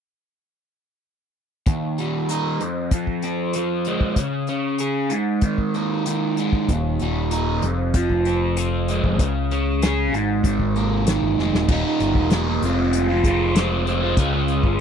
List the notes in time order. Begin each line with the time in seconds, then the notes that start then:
1.66 D#2, kick, closed hi-hat
1.98 G3, closed hi-hat
2.29 D#4, closed hi-hat
2.60 F2, closed hi-hat
2.91 F3, kick, closed hi-hat
3.07 kick
3.22 C4, closed hi-hat
3.53 F3, closed hi-hat
3.85 G#3, closed hi-hat
4.01 kick
4.16 C#3, kick, closed hi-hat
4.47 C#4, closed hi-hat
4.78 G#4, closed hi-hat
5.10 G#2, closed hi-hat
5.41 D#3, kick, closed hi-hat
5.58 kick
5.74 A#3, closed hi-hat
6.06 D#3, closed hi-hat
6.37 G#3, closed hi-hat
6.53 kick
6.69 D#1 D#2, kick, closed hi-hat
6.99 D#1 G3, closed hi-hat
7.31 D#4, closed hi-hat
7.62 F1 F2, closed hi-hat
7.94 F3, kick, closed hi-hat
8.10 F1, kick
8.25 C4, closed hi-hat
8.57 F3, closed hi-hat
8.88 G#3, closed hi-hat
9.04 F1, kick
9.19 C#2 C#3, kick, closed hi-hat
9.51 C#4, closed hi-hat
9.82 G#4, snare, closed hi-hat
10.12 G#1 G#2, closed hi-hat
10.44 G#1 D#3, kick, closed hi-hat
10.59 G#1, kick
10.76 A#3, closed hi-hat
11.07 D#3, snare, closed hi-hat
11.22 G1
11.38 F1 G#3, snare
11.53 D#1, snare
11.68 D#1 D#2 A#2 D#3 G3 A#3 D#4, kick, crash
11.85 D#3 G3 A#3 D#4
12.00 G1, closed hi-hat
12.15 E1, kick
12.30 D#2 A#2 D#3 G3 A#3 D#4, snare, closed hi-hat
12.47 D#3 G3 A#3 D#4
12.62 F1 F2 C3 F3 G#3 C4 F4, closed hi-hat
12.78 F3 G#3 C4 F4
12.93 closed hi-hat
13.08 F3 G#3 C4 F4
13.24 F1 F3 G#3 C4 F4, kick, closed hi-hat
13.54 F2 C3 F3 G#3 C4 F4, snare, closed hi-hat
13.69 F3 G#3 C4 F4
13.85 F3 G#3 C4 F4, closed hi-hat
14.01 F3 G#3 C4 F4
14.17 C#2 C#3 G#3 C#4 F4 G#4, kick, closed hi-hat
14.33 C#4 F4 G#4
14.48 closed hi-hat
14.63 G1, kick